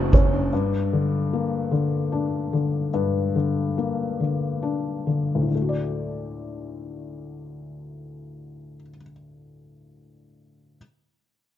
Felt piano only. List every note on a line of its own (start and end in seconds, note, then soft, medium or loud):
0.00 0.48 F#3 medium
0.00 0.49 B3 medium
0.00 0.54 D4 medium
0.00 0.54 F#4 medium
0.14 0.52 C#4 medium
0.53 2.89 G2 medium
0.93 1.70 D3 soft
1.33 2.90 A#3 soft
1.72 2.52 D3 soft
2.12 3.73 D4 soft
2.53 3.34 D3 soft
2.94 5.49 G2 medium
3.35 4.19 D3 soft
3.78 5.49 A#3 soft
4.20 5.05 D3 soft
4.63 5.49 D4 soft
5.07 5.47 D3 soft
5.35 8.76 D2 soft
5.41 8.82 A2 soft
5.48 8.90 D3 soft
5.55 8.96 A3 soft
5.62 9.03 F#4 soft
5.69 9.10 D5 soft